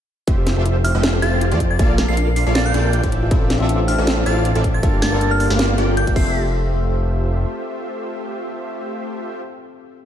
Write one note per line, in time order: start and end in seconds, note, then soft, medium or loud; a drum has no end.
0.27 0.55 F1 loud
0.27 0.54 A3 medium
0.27 0.32 E4 medium
0.27 0.54 F4 medium
0.27 0.54 G4 medium
0.27 0.54 C5 medium
0.27 0.54 E5 loud
0.27 kick loud
0.27 closed hi-hat medium
0.38 0.40 G4 loud
0.46 0.49 E4 loud
0.46 snare medium
0.46 closed hi-hat medium
0.57 0.93 F1 medium
0.57 0.92 A3 loud
0.57 0.92 F4 medium
0.57 0.92 G4 medium
0.57 0.61 A4 medium
0.57 0.92 C5 medium
0.57 0.92 E5 loud
0.65 0.73 E4 medium
0.65 closed hi-hat medium
0.76 0.78 C5 medium
0.84 0.89 E4 medium
0.84 0.95 F6 medium
0.84 open hi-hat medium
0.95 1.21 F1 loud
0.95 1.20 A3 medium
0.95 1.20 F4 medium
0.95 0.97 G4 loud
0.95 1.20 G4 medium
0.95 1.20 C5 medium
0.95 1.20 E5 loud
1.03 1.06 E4 loud
1.03 snare loud
1.03 closed hi-hat medium
1.14 1.18 A4 medium
1.22 1.53 F1 medium
1.22 1.49 A3 medium
1.22 1.30 E4 medium
1.22 1.49 F4 medium
1.22 1.49 G4 medium
1.22 1.49 C5 medium
1.22 1.49 F5 loud
1.22 1.33 A6 medium
1.22 closed hi-hat medium
1.33 1.35 C5 medium
1.41 1.46 E4 medium
1.41 closed hi-hat medium
1.52 1.78 F2 loud
1.52 1.77 A3 medium
1.52 1.77 F4 medium
1.52 1.54 G4 loud
1.52 1.77 G4 medium
1.52 1.77 C5 medium
1.52 1.77 D5 medium
1.52 closed hi-hat medium
1.60 1.63 E4 loud
1.60 kick medium
1.60 closed hi-hat medium
1.71 1.75 A4 medium
1.71 1.79 A6 medium
1.79 2.06 A#1 loud
1.79 2.06 A#3 medium
1.79 1.86 D4 medium
1.79 2.06 F4 medium
1.79 2.06 A4 medium
1.79 2.06 D5 medium
1.79 2.06 F5 loud
1.79 kick loud
1.79 closed hi-hat medium
1.89 1.92 D5 medium
1.98 2.03 D4 medium
1.98 snare medium
1.98 closed hi-hat medium
2.08 2.44 A#1 medium
2.08 2.44 A#3 medium
2.08 2.44 F4 medium
2.08 2.11 A4 loud
2.08 2.44 A4 medium
2.08 2.44 D5 medium
2.08 2.44 F5 loud
2.08 2.14 C7 medium
2.17 2.20 D4 loud
2.17 2.24 C7 medium
2.17 closed hi-hat medium
2.27 2.32 A#4 medium
2.36 2.43 D4 medium
2.36 2.53 C7 medium
2.36 open hi-hat medium
2.46 2.72 A#1 loud
2.46 2.72 A#3 medium
2.46 2.72 F4 medium
2.46 2.72 A4 medium
2.46 2.72 D5 medium
2.46 2.49 D5 medium
2.46 2.72 F5 loud
2.55 2.60 D4 medium
2.55 2.64 A6 medium
2.55 snare loud
2.55 closed hi-hat medium
2.65 2.68 A4 loud
2.65 3.16 G6 medium
2.74 3.01 A#1 medium
2.74 3.01 A#3 loud
2.74 2.77 D4 loud
2.74 3.01 F4 medium
2.74 3.01 A4 medium
2.74 3.01 D5 medium
2.74 3.01 G5 loud
2.74 closed hi-hat medium
2.84 2.89 A#4 medium
2.93 3.00 D4 medium
2.93 closed hi-hat medium
3.03 3.29 A1 loud
3.03 3.29 C4 medium
3.03 3.29 F4 medium
3.03 3.29 A4 medium
3.03 3.06 D5 medium
3.03 3.29 D5 medium
3.03 3.29 E5 medium
3.03 kick medium
3.03 closed hi-hat medium
3.12 3.17 D4 medium
3.12 closed hi-hat medium
3.22 3.25 F4 loud
3.30 3.58 A1 medium
3.30 3.57 C4 medium
3.30 3.58 C4 medium
3.30 3.34 D4 loud
3.30 3.58 E4 medium
3.30 3.58 F4 medium
3.30 3.58 A4 medium
3.30 3.58 A4 loud
3.30 3.58 D5 medium
3.30 3.58 E5 loud
3.30 kick loud
3.30 closed hi-hat medium
3.41 3.46 A4 medium
3.50 3.57 D4 medium
3.50 snare medium
3.50 closed hi-hat medium
3.58 3.96 A1 loud
3.58 4.80 C4 loud
3.58 3.96 C4 medium
3.58 3.96 F4 medium
3.58 4.81 F4 medium
3.58 3.96 A4 medium
3.58 4.82 A4 loud
3.58 3.63 C5 medium
3.58 3.96 D5 medium
3.58 4.81 E5 medium
3.58 3.96 E5 loud
3.69 3.74 D4 medium
3.69 closed hi-hat medium
3.79 3.82 F4 loud
3.88 3.91 D4 loud
3.88 3.98 F6 medium
3.88 open hi-hat medium
3.98 4.24 A1 loud
3.98 4.24 C4 medium
3.98 4.24 F4 medium
3.98 4.02 A4 medium
3.98 4.24 A4 medium
3.98 4.24 D5 medium
3.98 4.24 E5 loud
4.07 4.14 D4 medium
4.07 snare loud
4.07 closed hi-hat medium
4.17 4.20 C5 medium
4.26 4.53 A1 medium
4.26 4.53 C4 loud
4.26 4.31 D4 medium
4.26 4.53 F4 medium
4.26 4.53 A4 medium
4.26 4.53 D5 medium
4.26 4.53 F5 loud
4.26 4.36 A6 medium
4.26 closed hi-hat medium
4.36 4.39 F4 loud
4.45 4.48 D4 loud
4.45 closed hi-hat medium
4.55 4.81 A1 loud
4.55 4.81 C4 medium
4.55 4.81 F4 medium
4.55 4.59 A4 medium
4.55 4.81 A4 medium
4.55 4.81 D5 medium
4.55 4.81 E5 medium
4.55 closed hi-hat medium
4.64 4.71 D4 medium
4.64 kick medium
4.64 closed hi-hat medium
4.74 4.77 C5 medium
4.74 4.83 A6 medium
4.82 5.10 G1 medium
4.82 5.09 A#3 medium
4.82 5.10 A#3 medium
4.82 5.10 D4 medium
4.82 4.88 D4 medium
4.82 5.10 F4 medium
4.82 5.10 G4 medium
4.82 5.10 A4 loud
4.82 5.10 D5 medium
4.82 5.10 F5 loud
4.82 kick loud
4.82 closed hi-hat medium
4.93 4.96 G4 medium
5.02 5.05 D4 loud
5.02 5.29 A6 medium
5.02 snare medium
5.02 closed hi-hat medium
5.10 5.48 G1 loud
5.10 6.13 A#3 loud
5.10 5.48 A#3 loud
5.10 6.14 D4 medium
5.10 5.48 F4 medium
5.10 6.15 F4 medium
5.10 5.48 G4 medium
5.10 6.15 A4 loud
5.10 5.16 A#4 medium
5.10 5.48 D5 medium
5.10 5.48 F5 loud
5.21 5.28 D4 medium
5.21 closed hi-hat medium
5.31 5.34 D5 medium
5.31 5.37 F6 medium
5.40 5.45 D4 medium
5.40 5.47 F6 medium
5.40 open hi-hat medium
5.50 5.76 G1 loud
5.50 5.76 A#3 medium
5.50 5.76 F4 medium
5.50 5.53 G4 loud
5.50 5.76 G4 medium
5.50 5.76 D5 medium
5.50 5.76 F5 loud
5.50 snare medium
5.59 5.62 D4 loud
5.59 snare loud
5.59 closed hi-hat medium
5.69 5.73 A#4 medium
5.78 6.05 G1 medium
5.78 6.05 A#3 loud
5.78 6.05 F4 medium
5.78 5.83 G4 loud
5.78 6.05 G4 medium
5.78 6.05 D5 medium
5.78 6.05 G5 loud
5.78 closed hi-hat medium
5.88 5.92 F4 loud
5.97 6.02 F4 medium
5.97 6.07 G6 medium
5.97 closed hi-hat medium
6.07 6.15 G1 loud
6.07 6.16 A#3 medium
6.07 6.11 F4 medium
6.07 6.15 F4 medium
6.07 6.15 G4 medium
6.07 6.16 D5 medium
6.07 6.15 E5 medium
6.07 kick medium
6.07 closed hi-hat medium
6.13 7.45 F1 loud
6.13 9.42 A3 medium
6.13 9.39 C4 medium
6.13 9.42 F4 medium
6.13 9.42 G4 medium
6.13 9.43 G4 medium
6.13 9.42 C5 medium
6.13 9.41 E5 medium
6.13 6.51 E5 medium
6.13 9.42 E5 loud
6.13 6.35 C7 medium
6.13 kick loud
6.13 crash medium
6.19 9.45 A4 medium